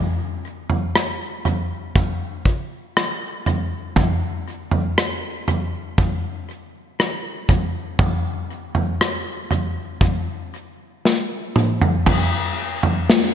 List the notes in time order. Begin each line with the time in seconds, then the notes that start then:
0.70 floor tom
0.96 cross-stick
1.45 floor tom
1.96 kick, floor tom
2.45 kick
2.97 cross-stick
3.46 floor tom
3.96 kick, floor tom
4.71 floor tom
4.98 cross-stick
5.48 floor tom
5.98 kick, floor tom
7.00 cross-stick
7.49 kick, floor tom
7.99 kick, floor tom
8.75 floor tom
9.01 cross-stick
9.51 floor tom
10.01 kick, floor tom
11.05 snare
11.56 mid tom
11.82 floor tom
12.06 kick, floor tom, crash
12.83 floor tom
13.10 snare